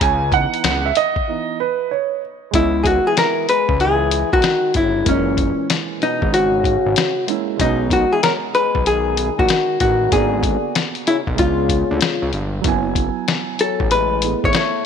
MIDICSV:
0, 0, Header, 1, 6, 480
1, 0, Start_track
1, 0, Tempo, 631579
1, 12, Time_signature, 4, 2, 24, 8
1, 11292, End_track
2, 0, Start_track
2, 0, Title_t, "Hollow-body jazz guitar"
2, 0, Program_c, 0, 26
2, 1939, Note_on_c, 0, 64, 84
2, 2155, Note_on_c, 0, 68, 63
2, 2162, Note_off_c, 0, 64, 0
2, 2174, Note_off_c, 0, 68, 0
2, 2178, Note_on_c, 0, 66, 88
2, 2321, Note_off_c, 0, 66, 0
2, 2334, Note_on_c, 0, 68, 84
2, 2417, Note_off_c, 0, 68, 0
2, 2421, Note_on_c, 0, 70, 98
2, 2652, Note_off_c, 0, 70, 0
2, 2655, Note_on_c, 0, 71, 94
2, 2877, Note_off_c, 0, 71, 0
2, 2894, Note_on_c, 0, 68, 93
2, 3293, Note_on_c, 0, 66, 87
2, 3302, Note_off_c, 0, 68, 0
2, 3618, Note_off_c, 0, 66, 0
2, 3621, Note_on_c, 0, 64, 81
2, 3864, Note_off_c, 0, 64, 0
2, 3865, Note_on_c, 0, 61, 68
2, 4308, Note_off_c, 0, 61, 0
2, 4582, Note_on_c, 0, 63, 90
2, 4814, Note_off_c, 0, 63, 0
2, 4817, Note_on_c, 0, 66, 104
2, 5504, Note_off_c, 0, 66, 0
2, 5785, Note_on_c, 0, 63, 81
2, 6023, Note_off_c, 0, 63, 0
2, 6026, Note_on_c, 0, 66, 85
2, 6176, Note_on_c, 0, 68, 83
2, 6181, Note_off_c, 0, 66, 0
2, 6254, Note_off_c, 0, 68, 0
2, 6257, Note_on_c, 0, 70, 108
2, 6321, Note_off_c, 0, 70, 0
2, 6497, Note_on_c, 0, 71, 98
2, 6738, Note_off_c, 0, 71, 0
2, 6741, Note_on_c, 0, 68, 101
2, 7106, Note_off_c, 0, 68, 0
2, 7138, Note_on_c, 0, 66, 84
2, 7444, Note_off_c, 0, 66, 0
2, 7453, Note_on_c, 0, 66, 91
2, 7696, Note_on_c, 0, 68, 81
2, 7700, Note_off_c, 0, 66, 0
2, 8144, Note_off_c, 0, 68, 0
2, 8418, Note_on_c, 0, 64, 86
2, 8482, Note_off_c, 0, 64, 0
2, 8658, Note_on_c, 0, 65, 100
2, 9345, Note_off_c, 0, 65, 0
2, 10341, Note_on_c, 0, 69, 89
2, 10575, Note_on_c, 0, 71, 97
2, 10584, Note_off_c, 0, 69, 0
2, 10943, Note_off_c, 0, 71, 0
2, 10982, Note_on_c, 0, 73, 96
2, 11054, Note_off_c, 0, 73, 0
2, 11067, Note_on_c, 0, 73, 93
2, 11292, Note_off_c, 0, 73, 0
2, 11292, End_track
3, 0, Start_track
3, 0, Title_t, "Grand piano"
3, 0, Program_c, 1, 0
3, 17, Note_on_c, 1, 80, 102
3, 238, Note_off_c, 1, 80, 0
3, 250, Note_on_c, 1, 52, 59
3, 254, Note_on_c, 1, 59, 52
3, 255, Note_on_c, 1, 78, 110
3, 258, Note_on_c, 1, 63, 60
3, 598, Note_off_c, 1, 52, 0
3, 600, Note_off_c, 1, 59, 0
3, 602, Note_off_c, 1, 63, 0
3, 651, Note_on_c, 1, 76, 90
3, 662, Note_off_c, 1, 78, 0
3, 736, Note_off_c, 1, 76, 0
3, 736, Note_on_c, 1, 75, 118
3, 972, Note_on_c, 1, 52, 48
3, 976, Note_on_c, 1, 59, 45
3, 979, Note_on_c, 1, 63, 51
3, 1184, Note_off_c, 1, 75, 0
3, 1188, Note_off_c, 1, 52, 0
3, 1190, Note_off_c, 1, 59, 0
3, 1192, Note_off_c, 1, 63, 0
3, 1217, Note_on_c, 1, 71, 87
3, 1438, Note_off_c, 1, 71, 0
3, 1454, Note_on_c, 1, 73, 78
3, 1676, Note_off_c, 1, 73, 0
3, 1907, Note_on_c, 1, 56, 59
3, 1924, Note_on_c, 1, 59, 57
3, 1941, Note_on_c, 1, 75, 59
3, 1958, Note_on_c, 1, 76, 65
3, 3809, Note_off_c, 1, 56, 0
3, 3818, Note_off_c, 1, 59, 0
3, 3827, Note_off_c, 1, 75, 0
3, 3827, Note_on_c, 1, 56, 60
3, 3835, Note_off_c, 1, 76, 0
3, 3842, Note_on_c, 1, 58, 58
3, 3860, Note_on_c, 1, 61, 60
3, 3878, Note_on_c, 1, 63, 58
3, 3927, Note_on_c, 1, 52, 67
3, 3930, Note_off_c, 1, 63, 0
3, 5489, Note_off_c, 1, 56, 0
3, 5497, Note_off_c, 1, 58, 0
3, 5506, Note_off_c, 1, 61, 0
3, 5524, Note_on_c, 1, 56, 60
3, 5532, Note_on_c, 1, 58, 53
3, 5540, Note_off_c, 1, 52, 0
3, 5542, Note_on_c, 1, 61, 56
3, 5551, Note_on_c, 1, 64, 72
3, 5741, Note_off_c, 1, 56, 0
3, 5753, Note_on_c, 1, 56, 65
3, 5769, Note_on_c, 1, 59, 56
3, 5772, Note_off_c, 1, 58, 0
3, 5776, Note_off_c, 1, 61, 0
3, 5782, Note_off_c, 1, 64, 0
3, 5787, Note_on_c, 1, 61, 59
3, 5803, Note_on_c, 1, 63, 67
3, 7652, Note_off_c, 1, 56, 0
3, 7660, Note_off_c, 1, 59, 0
3, 7668, Note_on_c, 1, 58, 64
3, 7669, Note_off_c, 1, 61, 0
3, 7677, Note_off_c, 1, 63, 0
3, 7684, Note_on_c, 1, 59, 60
3, 7701, Note_on_c, 1, 74, 59
3, 7719, Note_on_c, 1, 66, 69
3, 8621, Note_off_c, 1, 58, 0
3, 8625, Note_on_c, 1, 56, 58
3, 8629, Note_off_c, 1, 59, 0
3, 8638, Note_off_c, 1, 74, 0
3, 8642, Note_on_c, 1, 59, 52
3, 8647, Note_off_c, 1, 66, 0
3, 8661, Note_on_c, 1, 62, 51
3, 8678, Note_on_c, 1, 65, 65
3, 9579, Note_off_c, 1, 56, 0
3, 9586, Note_on_c, 1, 54, 73
3, 9588, Note_off_c, 1, 59, 0
3, 9597, Note_off_c, 1, 62, 0
3, 9604, Note_on_c, 1, 59, 72
3, 9606, Note_off_c, 1, 65, 0
3, 9622, Note_on_c, 1, 64, 65
3, 9641, Note_on_c, 1, 80, 77
3, 10775, Note_off_c, 1, 54, 0
3, 10784, Note_off_c, 1, 59, 0
3, 10794, Note_off_c, 1, 64, 0
3, 10801, Note_on_c, 1, 57, 46
3, 10803, Note_off_c, 1, 80, 0
3, 10811, Note_on_c, 1, 59, 44
3, 10819, Note_on_c, 1, 64, 45
3, 10827, Note_on_c, 1, 68, 53
3, 11292, Note_off_c, 1, 57, 0
3, 11292, Note_off_c, 1, 59, 0
3, 11292, Note_off_c, 1, 64, 0
3, 11292, Note_off_c, 1, 68, 0
3, 11292, End_track
4, 0, Start_track
4, 0, Title_t, "Trombone"
4, 0, Program_c, 2, 57
4, 1933, Note_on_c, 2, 49, 72
4, 2137, Note_off_c, 2, 49, 0
4, 2149, Note_on_c, 2, 52, 60
4, 2164, Note_off_c, 2, 52, 0
4, 2165, Note_on_c, 2, 51, 72
4, 2314, Note_off_c, 2, 51, 0
4, 2321, Note_on_c, 2, 52, 72
4, 2402, Note_off_c, 2, 52, 0
4, 2412, Note_on_c, 2, 52, 77
4, 2636, Note_off_c, 2, 52, 0
4, 2655, Note_on_c, 2, 56, 83
4, 2877, Note_off_c, 2, 56, 0
4, 2889, Note_on_c, 2, 52, 85
4, 3259, Note_off_c, 2, 52, 0
4, 3283, Note_on_c, 2, 51, 80
4, 3587, Note_off_c, 2, 51, 0
4, 3612, Note_on_c, 2, 49, 76
4, 3835, Note_off_c, 2, 49, 0
4, 3854, Note_on_c, 2, 46, 67
4, 4303, Note_off_c, 2, 46, 0
4, 4565, Note_on_c, 2, 47, 73
4, 4792, Note_off_c, 2, 47, 0
4, 4806, Note_on_c, 2, 49, 94
4, 5499, Note_off_c, 2, 49, 0
4, 5774, Note_on_c, 2, 47, 80
4, 5996, Note_off_c, 2, 47, 0
4, 6005, Note_on_c, 2, 51, 83
4, 6154, Note_off_c, 2, 51, 0
4, 6164, Note_on_c, 2, 52, 78
4, 6244, Note_off_c, 2, 52, 0
4, 6250, Note_on_c, 2, 54, 80
4, 6358, Note_off_c, 2, 54, 0
4, 6489, Note_on_c, 2, 56, 90
4, 6714, Note_off_c, 2, 56, 0
4, 6723, Note_on_c, 2, 51, 85
4, 7096, Note_off_c, 2, 51, 0
4, 7115, Note_on_c, 2, 51, 73
4, 7422, Note_off_c, 2, 51, 0
4, 7448, Note_on_c, 2, 51, 76
4, 7673, Note_off_c, 2, 51, 0
4, 7684, Note_on_c, 2, 50, 76
4, 8138, Note_off_c, 2, 50, 0
4, 8411, Note_on_c, 2, 49, 85
4, 8519, Note_off_c, 2, 49, 0
4, 8652, Note_on_c, 2, 49, 83
4, 9342, Note_off_c, 2, 49, 0
4, 10346, Note_on_c, 2, 54, 77
4, 10563, Note_off_c, 2, 54, 0
4, 10578, Note_on_c, 2, 56, 82
4, 10945, Note_off_c, 2, 56, 0
4, 10982, Note_on_c, 2, 57, 79
4, 11054, Note_off_c, 2, 57, 0
4, 11064, Note_on_c, 2, 57, 84
4, 11292, Note_off_c, 2, 57, 0
4, 11292, End_track
5, 0, Start_track
5, 0, Title_t, "Analog synth bass"
5, 0, Program_c, 3, 38
5, 10, Note_on_c, 3, 37, 102
5, 355, Note_off_c, 3, 37, 0
5, 487, Note_on_c, 3, 37, 101
5, 698, Note_off_c, 3, 37, 0
5, 1927, Note_on_c, 3, 37, 109
5, 2273, Note_off_c, 3, 37, 0
5, 2803, Note_on_c, 3, 37, 84
5, 3222, Note_off_c, 3, 37, 0
5, 3291, Note_on_c, 3, 35, 81
5, 3363, Note_off_c, 3, 35, 0
5, 3611, Note_on_c, 3, 31, 85
5, 3820, Note_off_c, 3, 31, 0
5, 3849, Note_on_c, 3, 30, 108
5, 4195, Note_off_c, 3, 30, 0
5, 4729, Note_on_c, 3, 32, 89
5, 5146, Note_off_c, 3, 32, 0
5, 5214, Note_on_c, 3, 32, 93
5, 5284, Note_off_c, 3, 32, 0
5, 5773, Note_on_c, 3, 35, 101
5, 6117, Note_off_c, 3, 35, 0
5, 6652, Note_on_c, 3, 35, 103
5, 7067, Note_off_c, 3, 35, 0
5, 7136, Note_on_c, 3, 34, 82
5, 7206, Note_off_c, 3, 34, 0
5, 7454, Note_on_c, 3, 33, 92
5, 7661, Note_off_c, 3, 33, 0
5, 7692, Note_on_c, 3, 32, 113
5, 8036, Note_off_c, 3, 32, 0
5, 8568, Note_on_c, 3, 35, 94
5, 8656, Note_on_c, 3, 37, 95
5, 8667, Note_off_c, 3, 35, 0
5, 8999, Note_off_c, 3, 37, 0
5, 9051, Note_on_c, 3, 38, 98
5, 9123, Note_off_c, 3, 38, 0
5, 9289, Note_on_c, 3, 37, 84
5, 9361, Note_off_c, 3, 37, 0
5, 9373, Note_on_c, 3, 31, 91
5, 9581, Note_off_c, 3, 31, 0
5, 9611, Note_on_c, 3, 30, 100
5, 9956, Note_off_c, 3, 30, 0
5, 10488, Note_on_c, 3, 33, 87
5, 10905, Note_off_c, 3, 33, 0
5, 10975, Note_on_c, 3, 32, 87
5, 11045, Note_off_c, 3, 32, 0
5, 11292, End_track
6, 0, Start_track
6, 0, Title_t, "Drums"
6, 7, Note_on_c, 9, 36, 107
6, 8, Note_on_c, 9, 42, 103
6, 83, Note_off_c, 9, 36, 0
6, 84, Note_off_c, 9, 42, 0
6, 242, Note_on_c, 9, 36, 102
6, 246, Note_on_c, 9, 42, 71
6, 318, Note_off_c, 9, 36, 0
6, 322, Note_off_c, 9, 42, 0
6, 407, Note_on_c, 9, 42, 47
6, 483, Note_off_c, 9, 42, 0
6, 486, Note_on_c, 9, 42, 94
6, 490, Note_on_c, 9, 38, 121
6, 562, Note_off_c, 9, 42, 0
6, 566, Note_off_c, 9, 38, 0
6, 725, Note_on_c, 9, 42, 72
6, 801, Note_off_c, 9, 42, 0
6, 883, Note_on_c, 9, 36, 96
6, 959, Note_off_c, 9, 36, 0
6, 1927, Note_on_c, 9, 42, 94
6, 1928, Note_on_c, 9, 36, 97
6, 2003, Note_off_c, 9, 42, 0
6, 2004, Note_off_c, 9, 36, 0
6, 2163, Note_on_c, 9, 36, 91
6, 2170, Note_on_c, 9, 42, 70
6, 2239, Note_off_c, 9, 36, 0
6, 2246, Note_off_c, 9, 42, 0
6, 2409, Note_on_c, 9, 42, 86
6, 2413, Note_on_c, 9, 38, 115
6, 2485, Note_off_c, 9, 42, 0
6, 2489, Note_off_c, 9, 38, 0
6, 2650, Note_on_c, 9, 42, 68
6, 2726, Note_off_c, 9, 42, 0
6, 2803, Note_on_c, 9, 36, 83
6, 2879, Note_off_c, 9, 36, 0
6, 2889, Note_on_c, 9, 42, 69
6, 2965, Note_off_c, 9, 42, 0
6, 3127, Note_on_c, 9, 42, 80
6, 3203, Note_off_c, 9, 42, 0
6, 3291, Note_on_c, 9, 36, 88
6, 3361, Note_on_c, 9, 42, 77
6, 3367, Note_off_c, 9, 36, 0
6, 3373, Note_on_c, 9, 38, 101
6, 3437, Note_off_c, 9, 42, 0
6, 3449, Note_off_c, 9, 38, 0
6, 3604, Note_on_c, 9, 42, 70
6, 3609, Note_on_c, 9, 36, 100
6, 3680, Note_off_c, 9, 42, 0
6, 3685, Note_off_c, 9, 36, 0
6, 3847, Note_on_c, 9, 42, 99
6, 3848, Note_on_c, 9, 36, 104
6, 3923, Note_off_c, 9, 42, 0
6, 3924, Note_off_c, 9, 36, 0
6, 4083, Note_on_c, 9, 36, 97
6, 4087, Note_on_c, 9, 42, 64
6, 4159, Note_off_c, 9, 36, 0
6, 4163, Note_off_c, 9, 42, 0
6, 4330, Note_on_c, 9, 42, 89
6, 4334, Note_on_c, 9, 38, 105
6, 4406, Note_off_c, 9, 42, 0
6, 4410, Note_off_c, 9, 38, 0
6, 4574, Note_on_c, 9, 42, 63
6, 4650, Note_off_c, 9, 42, 0
6, 4728, Note_on_c, 9, 36, 85
6, 4804, Note_off_c, 9, 36, 0
6, 4817, Note_on_c, 9, 42, 66
6, 4893, Note_off_c, 9, 42, 0
6, 5048, Note_on_c, 9, 36, 91
6, 5057, Note_on_c, 9, 42, 80
6, 5124, Note_off_c, 9, 36, 0
6, 5133, Note_off_c, 9, 42, 0
6, 5291, Note_on_c, 9, 42, 79
6, 5304, Note_on_c, 9, 38, 110
6, 5367, Note_off_c, 9, 42, 0
6, 5380, Note_off_c, 9, 38, 0
6, 5535, Note_on_c, 9, 42, 71
6, 5611, Note_off_c, 9, 42, 0
6, 5773, Note_on_c, 9, 36, 96
6, 5773, Note_on_c, 9, 42, 94
6, 5849, Note_off_c, 9, 36, 0
6, 5849, Note_off_c, 9, 42, 0
6, 6008, Note_on_c, 9, 36, 96
6, 6013, Note_on_c, 9, 42, 67
6, 6084, Note_off_c, 9, 36, 0
6, 6089, Note_off_c, 9, 42, 0
6, 6256, Note_on_c, 9, 42, 81
6, 6260, Note_on_c, 9, 38, 114
6, 6332, Note_off_c, 9, 42, 0
6, 6336, Note_off_c, 9, 38, 0
6, 6496, Note_on_c, 9, 42, 66
6, 6572, Note_off_c, 9, 42, 0
6, 6649, Note_on_c, 9, 36, 88
6, 6725, Note_off_c, 9, 36, 0
6, 6735, Note_on_c, 9, 42, 69
6, 6811, Note_off_c, 9, 42, 0
6, 6972, Note_on_c, 9, 42, 77
6, 7048, Note_off_c, 9, 42, 0
6, 7137, Note_on_c, 9, 36, 92
6, 7209, Note_on_c, 9, 42, 79
6, 7213, Note_off_c, 9, 36, 0
6, 7222, Note_on_c, 9, 38, 95
6, 7285, Note_off_c, 9, 42, 0
6, 7298, Note_off_c, 9, 38, 0
6, 7450, Note_on_c, 9, 42, 70
6, 7452, Note_on_c, 9, 36, 93
6, 7526, Note_off_c, 9, 42, 0
6, 7528, Note_off_c, 9, 36, 0
6, 7691, Note_on_c, 9, 36, 109
6, 7691, Note_on_c, 9, 42, 97
6, 7767, Note_off_c, 9, 36, 0
6, 7767, Note_off_c, 9, 42, 0
6, 7925, Note_on_c, 9, 36, 95
6, 7930, Note_on_c, 9, 42, 66
6, 8001, Note_off_c, 9, 36, 0
6, 8006, Note_off_c, 9, 42, 0
6, 8173, Note_on_c, 9, 42, 82
6, 8177, Note_on_c, 9, 38, 106
6, 8249, Note_off_c, 9, 42, 0
6, 8253, Note_off_c, 9, 38, 0
6, 8323, Note_on_c, 9, 42, 56
6, 8399, Note_off_c, 9, 42, 0
6, 8413, Note_on_c, 9, 42, 64
6, 8489, Note_off_c, 9, 42, 0
6, 8567, Note_on_c, 9, 36, 88
6, 8643, Note_off_c, 9, 36, 0
6, 8650, Note_on_c, 9, 42, 71
6, 8656, Note_on_c, 9, 36, 89
6, 8726, Note_off_c, 9, 42, 0
6, 8732, Note_off_c, 9, 36, 0
6, 8886, Note_on_c, 9, 36, 93
6, 8889, Note_on_c, 9, 42, 80
6, 8962, Note_off_c, 9, 36, 0
6, 8965, Note_off_c, 9, 42, 0
6, 9125, Note_on_c, 9, 42, 75
6, 9138, Note_on_c, 9, 38, 110
6, 9201, Note_off_c, 9, 42, 0
6, 9214, Note_off_c, 9, 38, 0
6, 9369, Note_on_c, 9, 42, 65
6, 9445, Note_off_c, 9, 42, 0
6, 9608, Note_on_c, 9, 42, 94
6, 9611, Note_on_c, 9, 36, 103
6, 9684, Note_off_c, 9, 42, 0
6, 9687, Note_off_c, 9, 36, 0
6, 9845, Note_on_c, 9, 36, 94
6, 9849, Note_on_c, 9, 42, 67
6, 9921, Note_off_c, 9, 36, 0
6, 9925, Note_off_c, 9, 42, 0
6, 10091, Note_on_c, 9, 42, 83
6, 10095, Note_on_c, 9, 38, 108
6, 10167, Note_off_c, 9, 42, 0
6, 10171, Note_off_c, 9, 38, 0
6, 10330, Note_on_c, 9, 42, 67
6, 10406, Note_off_c, 9, 42, 0
6, 10488, Note_on_c, 9, 36, 90
6, 10564, Note_off_c, 9, 36, 0
6, 10570, Note_on_c, 9, 42, 71
6, 10646, Note_off_c, 9, 42, 0
6, 10806, Note_on_c, 9, 42, 85
6, 10882, Note_off_c, 9, 42, 0
6, 10974, Note_on_c, 9, 36, 92
6, 11042, Note_on_c, 9, 42, 77
6, 11050, Note_off_c, 9, 36, 0
6, 11055, Note_on_c, 9, 38, 102
6, 11118, Note_off_c, 9, 42, 0
6, 11131, Note_off_c, 9, 38, 0
6, 11292, End_track
0, 0, End_of_file